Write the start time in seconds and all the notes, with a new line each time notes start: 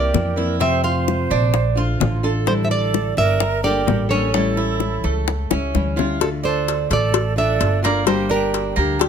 Already playing: E3 A#3 C4 E4 G4 A#4 D5
0.14 F2 E3 A#3 C4 E4, high bongo, low bongo
0.36 E3 A#3 C4 E4
0.60 C3 A3 C4 F4 C5 E5, high bongo
0.84 F4 C5 F5, high bongo
1.08 high bongo
1.30 A#1 D4, high bongo
1.54 muted nylon-string guitar stroke, high bongo
1.75 A3 D4 F4, high bongo
2.00 A1 D3 A3 D4 F4, high bongo, low bongo
2.23 A3 D4 F4 A4
2.46 D3 G3 D4 E4 A4 C5, high bongo
2.63 C5 E5
2.71 A4 D5, high bongo
2.94 high bongo
3.17 G1 D4 A#4 E5, high bongo
3.40 A#4, muted nylon-string guitar stroke, high bongo
3.63 G3 A#3 D4 G4 A4 A#4 D5, high bongo
3.86 A1 G3 A#3 D4 A4, high bongo, low bongo
4.09 G3 A#3 C#4 D4 A4 C#5
4.32 E3 G3 A3 C#4 E4, high bongo
4.57 E4, high bongo
4.80 high bongo
5.04 C#2 A3, high bongo
5.27 muted nylon-string guitar stroke, high bongo
5.51 C#2 G3 C#4 E4, high bongo
5.74 D2 E3 G3 C#4 E4, high bongo
5.96 G3 C#4 E4 F4, low bongo
6.20 D3 A3 D4 F4 A4, cowbell
6.43 D4 A4 C5
6.68 cowbell
6.90 A1 A3 A4 D5, cowbell
7.12 muted nylon-string guitar stroke, cowbell
7.36 A3 D4 F4 A4 E5
7.59 G1 D3 A3 D4 F4, cowbell
7.82 A3 A#3 D4 F4 A#4 D5, cowbell
8.04 D3 G3 A#3 D4 G4 C5, cowbell
8.29 D4 G4 A#4
8.54 cowbell
8.76 D2 A#3 D4 G4
8.99 G4, muted nylon-string guitar stroke, cowbell